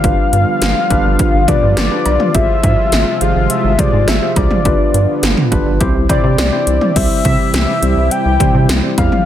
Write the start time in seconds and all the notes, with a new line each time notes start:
Already playing: G3 F5
0.04 G1 D3 F3 B3 D4 F4 G4 B4, kick, closed hi-hat
0.33 G2, closed hi-hat
0.62 G1, snare, closed hi-hat
0.90 G1 D4 F4 G4 B4, kick, closed hi-hat
1.05 G1
1.19 kick, closed hi-hat
1.34 G1
1.48 D4 F4 G4 B4 D5, kick, closed hi-hat, mid tom
1.62 G2
1.77 G1 D5, snare, closed hi-hat
1.91 D4 F4 G4 B4
2.06 B1, closed hi-hat, cowbell
2.20 mid tom
2.35 G#1 C3 G#3 F4 G4 G#4 C5 E5, kick, closed hi-hat
2.63 G#2, kick, closed hi-hat
2.92 G#1, snare, closed hi-hat
3.21 G#1 F4 G4 G#4 C5 F5, closed hi-hat
3.36 G#1
3.50 E5, closed hi-hat
3.64 G#1
3.79 F4 G4 G#4 C5 D5, kick, closed hi-hat, mid tom
3.93 G#2
4.08 G#1 E5, snare, closed hi-hat
4.22 F4 G4 G#4 C5
4.36 C2 D5, kick, closed hi-hat, cowbell
4.51 mid tom
4.65 G1 D3 B3 D4 F4 G4 B4, kick, closed hi-hat
4.94 G2, closed hi-hat
5.23 G1, snare, closed hi-hat
5.37 mid tom
5.52 G1 D4 F4 G4 B4, kick, closed hi-hat
5.66 G1
5.80 C2 C3 E3 C4 E4 G4 C5, kick, closed hi-hat
5.95 C2
6.09 C4 E4 G4 C5 D5, kick, closed hi-hat, mid tom, cowbell
6.24 C3
6.38 C2 D5, snare, closed hi-hat
6.53 C4 E4 G4 C5
6.67 C2, closed hi-hat
6.81 mid tom
6.96 C2 C3 E3 G3 C4 E4 G4 C5 E5, kick, closed hi-hat, crash
7.25 C3 E5, kick, closed hi-hat
7.54 C2 E5, snare, closed hi-hat
7.82 C2 G3 C4 E4 G4 C5, closed hi-hat
7.97 C2
8.11 G5, closed hi-hat
8.26 C2
8.40 G3 C4 E4 G4 C5, kick, closed hi-hat, mid tom
8.54 C3
8.69 C2, snare, closed hi-hat
8.83 G3 C4 E4 G4 C5
8.98 E2 F5, kick, closed hi-hat, cowbell
9.12 mid tom